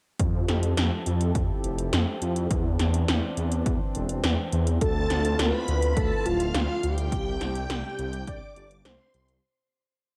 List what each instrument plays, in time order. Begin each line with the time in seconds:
0.20 detuned saw bass F2, analog synth pad F3 C4 E4 G4 A4, kick, closed hi-hat
0.49 detuned saw bass F2, snare, closed hi-hat
0.63 closed hi-hat
0.77 detuned saw bass F2, snare, closed hi-hat
1.06 detuned saw bass F2, closed hi-hat
1.21 closed hi-hat
1.35 kick, closed hi-hat
1.64 detuned saw bass F1, closed hi-hat
1.78 closed hi-hat
1.93 detuned saw bass F2, snare, closed hi-hat
2.22 detuned saw bass F2, closed hi-hat
2.36 closed hi-hat
2.50 detuned saw bass E2, analog synth pad E3 D4, kick, closed hi-hat
2.79 detuned saw bass E2, snare, closed hi-hat
2.94 closed hi-hat
3.08 detuned saw bass E2, snare, closed hi-hat
3.37 detuned saw bass E2, closed hi-hat
3.51 closed hi-hat
3.66 detuned saw bass E2, kick, closed hi-hat
3.95 detuned saw bass E1, closed hi-hat
4.09 closed hi-hat
4.24 detuned saw bass E2, snare, closed hi-hat
4.53 detuned saw bass E2, closed hi-hat
4.67 closed hi-hat
4.81 detuned saw bass D2, analog synth pad D3 A3 E4 F4, analog synth lead A4, string machine A5, kick, closed hi-hat
5.10 detuned saw bass D2, snare, closed hi-hat
5.25 closed hi-hat
5.39 detuned saw bass D2, analog synth lead B4, string machine B5, snare, closed hi-hat
5.68 detuned saw bass D2, closed hi-hat
5.82 closed hi-hat
5.97 detuned saw bass D2, analog synth lead A4, string machine A5, kick, closed hi-hat
6.26 detuned saw bass D1, analog synth lead F4, string machine F5, closed hi-hat
6.40 closed hi-hat
6.54 detuned saw bass D2, analog synth lead F4, string machine F5, snare, closed hi-hat
6.83 detuned saw bass D2, analog synth lead G4, string machine G5, closed hi-hat
6.98 closed hi-hat
7.12 detuned saw bass C2, analog synth pad C3 D4 G4, kick, closed hi-hat
7.41 detuned saw bass C2, snare, closed hi-hat
7.55 closed hi-hat
7.70 detuned saw bass C2, snare, closed hi-hat
7.99 detuned saw bass C2, closed hi-hat
8.13 closed hi-hat
8.27 analog synth lead D5, string machine D6, kick, closed hi-hat
8.56 detuned saw bass G1, analog synth lead D5, string machine D6, closed hi-hat
8.71 closed hi-hat
8.85 detuned saw bass C2, analog synth lead C5, string machine C6, snare, closed hi-hat
9.14 detuned saw bass C2, closed hi-hat
9.29 closed hi-hat